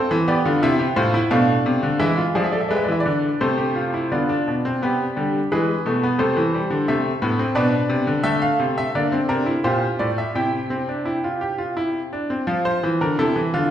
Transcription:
0.00 0.15 C4 medium
0.00 0.15 A4 medium
0.00 0.15 C5 medium
0.11 0.33 E3 medium
0.28 1.29 B3 medium
0.28 0.45 G4 medium
0.28 0.50 D5 medium
0.45 0.63 D3 medium
0.45 0.63 F4 medium
0.62 0.85 C3 loud
0.62 0.80 E4 medium
0.62 0.85 E5 medium
0.79 0.97 G4 medium
0.96 1.19 A2 medium
0.96 1.14 F4 medium
0.96 1.19 C5 medium
1.14 1.32 E4 medium
1.31 1.53 B2 medium
1.31 1.99 A3 medium
1.31 1.99 D4 medium
1.31 1.99 F5 medium
1.66 1.84 C3 medium
1.83 2.01 D3 medium
1.99 2.22 E3 medium
1.99 2.69 G#3 medium
1.99 2.18 E4 medium
1.99 2.22 E5 medium
2.17 2.35 F4 medium
2.35 2.57 F3 medium
2.35 2.53 G#4 medium
2.35 2.44 D5 medium
2.44 2.52 E5 medium
2.52 2.70 A4 medium
2.52 2.60 D5 medium
2.60 2.69 E5 medium
2.68 2.88 G#3 medium
2.68 3.39 B4 medium
2.68 2.77 D5 medium
2.76 2.85 E5 medium
2.84 2.92 D5 medium
2.88 3.06 E3 medium
2.88 3.01 E5 medium
3.00 3.40 D5 medium
3.06 3.28 D3 medium
3.41 4.09 C3 medium
3.41 4.09 A3 medium
3.41 3.58 A4 medium
3.41 4.09 C5 medium
3.58 3.75 G4 medium
3.75 3.93 F4 medium
3.94 4.11 E4 medium
4.12 4.33 D3 medium
4.12 4.29 B3 medium
4.12 4.79 F4 medium
4.12 5.47 D5 medium
4.29 4.51 D4 medium
4.48 4.69 B2 medium
4.65 4.82 C4 medium
4.82 5.04 C3 medium
4.82 5.04 B3 medium
4.82 5.49 G4 medium
5.16 5.38 D3 medium
5.16 5.38 G3 medium
5.52 5.73 E3 medium
5.52 5.73 G#3 medium
5.52 6.18 G#4 medium
5.52 6.18 B4 medium
5.86 6.07 B2 medium
5.86 6.02 A3 medium
6.03 6.20 B3 medium
6.19 6.36 C3 medium
6.19 6.40 A3 medium
6.19 7.52 A4 medium
6.19 6.86 C5 medium
6.37 6.58 E3 medium
6.54 6.75 G3 medium
6.70 6.87 D3 medium
6.88 7.10 C3 medium
6.88 7.10 A3 medium
6.88 7.55 E5 medium
7.22 7.43 A2 medium
7.22 7.39 B3 medium
7.39 7.56 C4 medium
7.55 7.77 B2 medium
7.55 8.23 D4 medium
7.55 8.23 B4 medium
7.55 8.22 D5 medium
7.89 8.07 C3 medium
8.07 8.22 D3 medium
8.23 8.45 D3 medium
8.23 8.91 A3 medium
8.23 9.59 A4 medium
8.23 8.41 E5 medium
8.42 8.63 F5 medium
8.59 8.81 C3 medium
8.78 8.94 E5 medium
8.95 9.16 D3 medium
8.95 9.12 A#3 medium
8.95 9.17 D5 medium
9.12 9.29 C4 medium
9.29 9.51 C3 medium
9.29 9.46 D4 medium
9.29 9.51 A#4 medium
9.46 9.63 E4 medium
9.64 9.86 A#2 medium
9.64 10.33 F4 medium
9.64 10.33 G4 medium
9.64 9.86 C5 medium
9.99 10.22 A2 medium
9.99 10.17 D5 medium
10.18 10.35 E5 medium
10.35 12.10 C3 medium
10.35 10.58 E4 medium
10.35 11.40 G4 medium
10.35 12.10 G5 medium
10.70 10.88 C4 medium
10.89 11.06 D4 medium
11.06 11.23 E4 medium
11.24 11.42 F4 medium
11.41 11.59 G4 medium
11.58 11.77 F4 medium
11.77 11.99 E4 medium
12.13 12.30 D4 medium
12.30 12.48 C4 medium
12.47 12.70 F3 medium
12.47 13.16 F4 medium
12.65 12.87 C5 medium
12.83 13.01 E3 medium
13.01 13.18 D3 medium
13.01 13.19 A#4 medium
13.19 13.36 C3 medium
13.19 13.71 E4 medium
13.19 13.41 A4 medium
13.36 13.53 E3 medium
13.54 13.71 D3 medium
13.54 13.71 F4 medium

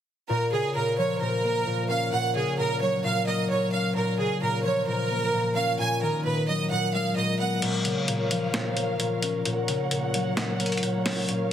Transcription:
0.29 0.57 A#2 loud
0.29 0.49 A#4 medium
0.52 0.80 C#3 medium
0.52 0.72 G#4 medium
0.75 1.20 A#2 medium
0.75 0.95 A#4 medium
0.98 2.18 F3 medium
0.98 1.18 C#5 medium
1.21 1.66 A#2 medium
1.21 1.86 A#4 medium
1.44 3.27 A#3 medium
1.67 2.11 A#2 medium
1.90 3.72 C#4 medium
1.90 2.10 F5 medium
2.13 2.40 A#2 medium
2.13 2.33 F#5 medium
2.36 2.63 C#3 medium
2.36 2.56 G#4 medium
2.58 3.03 A#2 medium
2.58 2.78 A#4 medium
2.81 4.01 F#3 medium
2.81 3.01 C#5 medium
3.04 3.49 A#2 medium
3.04 3.24 F5 medium
3.27 5.10 A#3 medium
3.27 3.47 D#5 medium
3.50 3.95 A#2 medium
3.50 3.70 C#5 medium
3.73 5.56 C#4 medium
3.73 3.93 F5 medium
3.95 4.24 A#2 medium
3.95 4.16 A#4 medium
4.19 4.47 C#3 medium
4.19 4.39 G#4 medium
4.42 4.86 A#2 medium
4.42 4.62 A#4 medium
4.64 5.84 F3 medium
4.64 4.85 C#5 medium
4.87 5.32 A#2 medium
4.87 5.52 A#4 medium
5.10 7.45 A#3 medium
5.33 5.78 A#2 medium
5.56 8.46 C#4 medium
5.56 5.76 F5 medium
5.79 6.07 A#2 medium
5.79 5.99 G#5 loud
6.02 6.30 D#3 medium
6.02 6.22 A#4 medium
6.25 6.69 A#2 medium
6.25 6.45 B4 medium
6.48 7.67 F#3 medium
6.48 6.68 D#5 medium
6.71 7.15 A#2 medium
6.71 6.91 F#5 medium
6.94 7.67 G#3 medium
6.94 7.14 F5 medium
7.16 7.61 A#2 medium
7.16 7.36 D#5 medium
7.39 7.68 B3 medium
7.39 7.59 F#5 medium
7.62 7.90 A#2 medium
7.62 11.53 A#2 medium
7.62 11.25 A#4 medium
7.62 9.44 C#5 medium
7.62 9.44 F5 medium
7.62 closed hi-hat medium
7.62 crash medium
7.85 8.13 C#3 medium
7.85 closed hi-hat medium
8.08 8.53 A#2 medium
8.08 closed hi-hat medium
8.31 9.50 F3 medium
8.31 closed hi-hat medium
8.54 8.98 A#2 medium
8.54 finger snap medium
8.54 snare loud
8.54 closed hi-hat medium
8.77 10.59 A#3 medium
8.77 closed hi-hat medium
9.00 9.44 A#2 medium
9.00 closed hi-hat medium
9.22 11.05 C#4 medium
9.22 closed hi-hat medium
9.45 9.73 A#2 medium
9.45 11.53 C#5 medium
9.45 11.27 F#5 medium
9.45 closed hi-hat medium
9.68 9.96 C#3 medium
9.68 closed hi-hat medium
9.91 10.36 A#2 medium
9.91 closed hi-hat medium
10.14 11.34 F#3 medium
10.14 closed hi-hat medium
10.37 10.82 A#2 medium
10.37 finger snap medium
10.37 snare loud
10.37 closed hi-hat medium
10.60 11.53 A#3 medium
10.60 closed hi-hat medium
10.66 closed hi-hat medium
10.72 closed hi-hat medium
10.77 closed hi-hat medium
10.83 11.27 A#2 medium
10.83 closed hi-hat medium
11.06 11.53 C#4 medium
11.06 finger snap medium
11.06 snare loud
11.06 open hi-hat medium
11.29 11.53 A#2 medium
11.29 11.53 A#4 medium
11.29 11.53 F5 medium
11.29 closed hi-hat medium

